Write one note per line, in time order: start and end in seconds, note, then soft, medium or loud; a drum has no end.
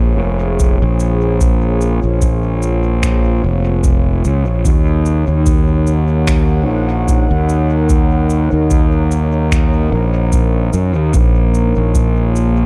0.00 0.19 A#1 medium
0.00 6.18 A#3 medium
0.00 4.66 F4 medium
0.00 5.77 G#4 medium
0.00 12.66 C#5 medium
0.19 0.78 F1 medium
0.60 kick loud
0.60 cabasa soft
0.82 1.99 A#1 medium
1.00 cabasa soft
1.41 kick loud
1.41 cabasa medium
1.81 cabasa soft
2.04 3.40 A#1 medium
2.22 kick loud
2.22 cabasa medium
2.62 cabasa soft
3.03 finger snap medium
3.03 kick loud
3.03 cabasa soft
3.44 4.21 F1 medium
3.84 kick loud
3.84 cabasa medium
4.25 4.47 C#2 medium
4.25 cabasa soft
4.47 4.63 A#1 medium
4.64 5.24 D#2 medium
4.64 12.66 D#4 medium
4.64 kick loud
4.64 cabasa soft
5.06 cabasa soft
5.28 6.68 D#2 medium
5.28 12.22 A#4 medium
5.28 11.14 F#5 medium
5.46 kick loud
5.46 cabasa medium
5.87 cabasa soft
6.27 finger snap medium
6.27 kick loud
6.27 cabasa medium
6.68 7.26 A#1 medium
7.08 kick loud
7.08 cabasa soft
7.31 8.48 D#2 medium
7.49 cabasa soft
7.89 kick loud
7.89 cabasa soft
8.30 cabasa soft
8.53 9.89 D#2 medium
8.71 kick loud
8.71 cabasa soft
9.11 cabasa soft
9.52 finger snap medium
9.52 kick loud
9.52 cabasa soft
9.92 10.70 A#1 medium
10.32 kick loud
10.32 cabasa soft
10.73 10.96 F#2 medium
10.73 cabasa soft
10.96 11.12 D#2 medium
11.14 11.72 A#1 medium
11.14 12.66 A#3 medium
11.14 kick loud
11.14 cabasa soft
11.40 12.66 F4 medium
11.54 cabasa soft
11.77 12.66 A#1 medium
11.95 kick loud
11.95 cabasa soft
12.33 12.66 G#4 medium
12.33 cabasa soft